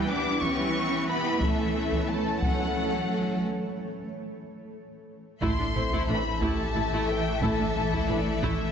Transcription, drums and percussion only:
0.42 taiko medium
1.42 taiko medium
1.92 taiko medium
2.42 taiko medium
5.42 taiko medium
5.92 taiko medium
6.42 taiko medium
7.42 taiko medium
7.92 taiko medium
8.42 taiko medium

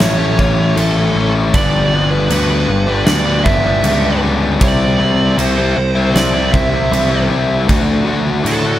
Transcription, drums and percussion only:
0.00 snare loud
0.00 crash medium
0.39 kick medium
0.77 crash medium
1.54 kick loud
1.54 crash medium
2.30 crash medium
3.07 snare loud
3.07 crash medium
3.46 kick medium
3.84 crash medium
4.61 kick loud
4.61 crash medium
5.39 crash medium
6.16 snare loud
6.16 crash medium
6.54 kick medium
6.93 crash medium
7.69 kick loud
7.69 crash medium
8.46 crash medium

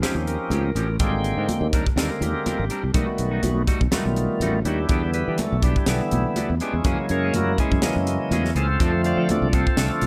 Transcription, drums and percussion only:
0.03 snare loud
0.03 closed hi-hat medium
0.03 muted conga soft
0.03 high conga medium
0.27 closed hi-hat medium
0.27 muted conga soft
0.51 closed hi-hat medium
0.51 high conga medium
0.75 closed hi-hat medium
0.75 muted conga soft
0.99 kick loud
0.99 closed hi-hat medium
0.99 muted conga soft
1.24 closed hi-hat medium
1.49 closed hi-hat medium
1.49 high conga medium
1.73 kick medium
1.73 closed hi-hat medium
1.87 kick medium
1.98 snare loud
1.98 closed hi-hat medium
1.98 muted conga soft
2.22 closed hi-hat medium
2.22 muted conga soft
2.22 high conga medium
2.46 closed hi-hat medium
2.46 high conga medium
2.70 closed hi-hat medium
2.70 muted conga soft
2.94 kick loud
2.94 closed hi-hat medium
2.94 muted conga soft
3.18 closed hi-hat medium
3.43 closed hi-hat medium
3.43 high conga medium
3.67 kick medium
3.67 closed hi-hat medium
3.81 kick medium
3.92 snare loud
3.92 closed hi-hat medium
3.92 muted conga soft
3.92 high conga medium
4.16 closed hi-hat medium
4.16 muted conga soft
4.41 closed hi-hat medium
4.41 high conga medium
4.65 closed hi-hat medium
4.65 muted conga soft
4.89 kick loud
4.89 closed hi-hat medium
4.89 muted conga soft
5.14 closed hi-hat medium
5.38 closed hi-hat medium
5.38 high conga medium
5.62 kick medium
5.62 closed hi-hat medium
5.76 kick medium
5.86 snare loud
5.86 closed hi-hat medium
5.86 muted conga soft
6.11 closed hi-hat medium
6.11 muted conga soft
6.11 high conga medium
6.36 closed hi-hat medium
6.36 high conga medium
6.60 closed hi-hat medium
6.60 muted conga soft
6.84 kick medium
6.84 closed hi-hat medium
6.84 muted conga soft
7.09 closed hi-hat medium
7.34 closed hi-hat medium
7.34 high conga medium
7.58 kick medium
7.58 closed hi-hat medium
7.72 kick medium
7.82 snare loud
7.82 closed hi-hat medium
7.82 muted conga soft
7.82 high conga medium
8.07 closed hi-hat medium
8.07 muted conga soft
8.32 closed hi-hat medium
8.32 high conga medium
8.45 snare soft
8.56 closed hi-hat medium
8.56 muted conga soft
8.80 kick loud
8.80 closed hi-hat medium
8.80 muted conga soft
9.04 closed hi-hat medium
9.29 closed hi-hat medium
9.29 high conga medium
9.53 kick medium
9.53 closed hi-hat medium
9.67 kick medium
9.77 snare loud
9.77 closed hi-hat medium
9.77 muted conga soft
10.01 closed hi-hat medium
10.01 muted conga soft
10.01 high conga medium

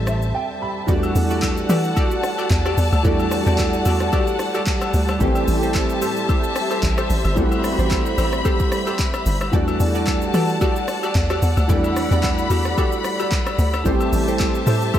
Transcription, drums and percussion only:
0.07 cross-stick loud
0.07 shaker medium
0.22 shaker soft
0.88 kick loud
0.88 shaker medium
1.03 high agogo medium
1.03 shaker medium
1.16 open hi-hat medium
1.16 shaker loud
1.31 shaker medium
1.42 kick medium
1.42 clap loud
1.42 high agogo medium
1.42 shaker medium
1.57 shaker medium
1.69 open hi-hat medium
1.69 high agogo medium
1.69 shaker loud
1.84 shaker medium
1.96 kick loud
1.96 high agogo medium
1.96 shaker medium
2.11 shaker medium
2.23 cross-stick loud
2.23 open hi-hat soft
2.23 shaker medium
2.38 high agogo medium
2.38 shaker soft
2.50 kick loud
2.50 clap medium
2.50 shaker medium
2.66 cross-stick medium
2.66 high agogo medium
2.66 shaker medium
2.78 open hi-hat medium
2.78 shaker medium
2.93 high agogo medium
2.93 shaker medium
3.05 kick loud
3.05 shaker medium
3.19 high agogo medium
3.19 shaker medium
3.31 cross-stick loud
3.31 open hi-hat medium
3.31 shaker loud
3.47 shaker medium
3.58 kick medium
3.58 clap loud
3.58 high agogo medium
3.58 shaker medium
3.73 shaker medium
3.85 open hi-hat medium
3.85 high agogo medium
3.85 shaker loud
4.00 cross-stick loud
4.00 shaker medium
4.13 kick loud
4.13 high agogo medium
4.13 shaker medium
4.27 shaker medium
4.39 cross-stick loud
4.39 open hi-hat medium
4.39 shaker medium
4.54 high agogo medium
4.54 shaker medium
4.66 kick loud
4.66 clap medium
4.66 shaker medium
4.81 cross-stick medium
4.81 high agogo medium
4.81 shaker medium
4.94 open hi-hat medium
4.94 shaker medium
5.08 cross-stick medium
5.08 high agogo medium
5.08 shaker medium
5.20 kick loud
5.20 shaker medium
5.35 high agogo medium
5.35 shaker medium
5.48 open hi-hat medium
5.48 shaker loud
5.63 shaker medium
5.74 kick medium
5.74 clap loud
5.74 high agogo medium
5.74 shaker medium
5.90 shaker medium
6.02 open hi-hat medium
6.02 high agogo medium
6.02 shaker loud
6.17 shaker medium
6.29 kick loud
6.29 high agogo medium
6.29 shaker medium
6.44 shaker medium
6.56 cross-stick loud
6.56 open hi-hat medium
6.56 shaker medium
6.71 high agogo medium
6.71 shaker medium
6.83 kick loud
6.83 clap medium
6.83 shaker medium
6.98 cross-stick loud
6.98 high agogo medium
6.98 shaker medium
7.10 open hi-hat medium
7.10 shaker medium
7.25 high agogo medium
7.25 shaker medium
7.37 kick loud
7.37 shaker medium
7.52 high agogo medium
7.52 shaker medium
7.64 cross-stick loud
7.64 open hi-hat medium
7.64 shaker loud
7.79 shaker medium
7.91 kick medium
7.91 clap loud
7.91 high agogo medium
7.91 shaker medium
8.06 shaker medium
8.18 open hi-hat medium
8.18 high agogo medium
8.18 shaker loud
8.33 cross-stick loud
8.33 shaker medium
8.45 kick loud
8.45 high agogo medium
8.45 shaker medium
8.60 kick loud
8.60 shaker medium
8.72 cross-stick loud
8.72 open hi-hat soft
8.72 shaker medium
8.87 high agogo medium
8.87 shaker medium
8.99 kick loud
8.99 clap medium
8.99 shaker medium
9.14 cross-stick medium
9.14 high agogo medium
9.14 shaker medium
9.26 open hi-hat medium
9.26 shaker medium
9.41 cross-stick medium
9.41 high agogo medium
9.41 shaker medium
9.53 kick loud
9.53 shaker medium
9.68 high agogo medium
9.68 shaker medium
9.80 open hi-hat medium
9.80 shaker loud
9.95 shaker medium
10.07 kick medium
10.07 clap loud
10.07 high agogo medium
10.07 shaker medium
10.22 shaker medium
10.34 open hi-hat medium
10.34 high agogo medium
10.34 shaker loud
10.49 shaker medium
10.61 kick loud
10.61 high agogo medium
10.61 shaker medium
10.76 shaker medium
10.88 cross-stick loud
10.88 open hi-hat medium
10.88 shaker medium
11.03 high agogo medium
11.03 shaker soft
11.15 kick loud
11.15 clap medium
11.15 shaker medium
11.30 cross-stick loud
11.30 high agogo medium
11.30 shaker medium
11.42 open hi-hat medium
11.42 shaker medium
11.57 high agogo medium
11.57 shaker medium
11.69 kick loud
11.69 shaker medium
11.84 high agogo medium
11.84 shaker medium
11.97 cross-stick loud
11.97 open hi-hat medium
11.97 shaker loud
12.12 shaker medium
12.23 kick loud
12.23 clap loud
12.23 high agogo medium
12.23 shaker medium
12.38 shaker medium
12.51 open hi-hat medium
12.51 high agogo medium
12.51 shaker loud
12.65 cross-stick loud
12.65 shaker medium
12.78 kick loud
12.78 high agogo medium
12.78 shaker medium
12.92 shaker medium
13.04 cross-stick loud
13.04 open hi-hat soft
13.04 shaker medium
13.19 high agogo medium
13.19 shaker medium
13.31 kick loud
13.31 clap medium
13.31 shaker medium
13.47 cross-stick loud
13.47 high agogo medium
13.47 shaker medium
13.59 open hi-hat medium
13.59 shaker medium
13.74 cross-stick medium
13.74 high agogo medium
13.74 shaker medium
13.86 kick loud
13.86 shaker medium
14.01 high agogo medium
14.01 shaker medium
14.13 open hi-hat medium
14.13 shaker loud
14.28 shaker medium
14.40 kick medium
14.40 clap loud
14.40 high agogo medium
14.40 shaker medium
14.55 shaker medium
14.67 open hi-hat medium
14.67 high agogo medium
14.67 shaker loud
14.82 shaker medium
14.94 kick loud
14.94 high agogo medium
14.94 shaker medium

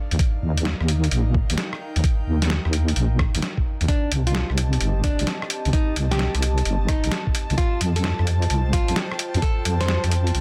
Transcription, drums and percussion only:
0.11 closed hi-hat soft
0.19 kick loud
0.19 closed hi-hat medium
0.57 closed hi-hat medium
0.65 snare loud
0.81 cross-stick soft
0.88 closed hi-hat medium
1.04 closed hi-hat soft
1.11 closed hi-hat medium
1.34 kick medium
1.50 closed hi-hat medium
1.58 snare loud
1.58 closed hi-hat medium
1.73 cross-stick soft
1.96 closed hi-hat soft
2.04 kick loud
2.04 closed hi-hat medium
2.42 snare medium
2.42 closed hi-hat medium
2.50 snare loud
2.65 cross-stick soft
2.73 closed hi-hat medium
2.88 closed hi-hat soft
2.96 closed hi-hat medium
3.19 kick loud
3.19 cross-stick medium
3.35 closed hi-hat medium
3.42 snare loud
3.42 closed hi-hat medium
3.57 kick medium
3.81 closed hi-hat soft
3.88 kick loud
3.88 closed hi-hat medium
4.12 closed hi-hat loud
4.27 closed hi-hat medium
4.35 snare loud
4.50 cross-stick soft
4.58 closed hi-hat loud
4.73 closed hi-hat soft
4.81 closed hi-hat medium
5.04 kick loud
5.04 closed hi-hat loud
5.19 closed hi-hat medium
5.27 snare loud
5.27 closed hi-hat medium
5.42 cross-stick medium
5.50 closed hi-hat loud
5.65 closed hi-hat soft
5.73 kick loud
5.73 closed hi-hat medium
5.96 closed hi-hat loud
6.12 snare medium
6.12 closed hi-hat medium
6.19 snare loud
6.35 cross-stick soft
6.35 closed hi-hat medium
6.42 closed hi-hat loud
6.58 closed hi-hat soft
6.65 closed hi-hat medium
6.88 kick loud
6.88 cross-stick medium
6.88 closed hi-hat loud
7.04 closed hi-hat medium
7.12 snare loud
7.12 closed hi-hat medium
7.27 kick medium
7.35 closed hi-hat loud
7.50 closed hi-hat soft
7.58 kick loud
7.58 closed hi-hat medium
7.81 closed hi-hat loud
7.96 closed hi-hat medium
8.04 snare loud
8.19 cross-stick soft
8.27 closed hi-hat loud
8.42 closed hi-hat soft
8.50 closed hi-hat medium
8.73 kick loud
8.73 closed hi-hat loud
8.88 closed hi-hat medium
8.96 snare loud
8.96 closed hi-hat medium
9.11 cross-stick medium
9.19 closed hi-hat loud
9.34 closed hi-hat soft
9.42 kick loud
9.42 closed hi-hat medium
9.65 closed hi-hat loud
9.81 snare medium
9.81 closed hi-hat medium
9.88 snare loud
10.04 cross-stick soft
10.04 closed hi-hat medium
10.11 closed hi-hat loud
10.27 closed hi-hat soft
10.35 closed hi-hat medium

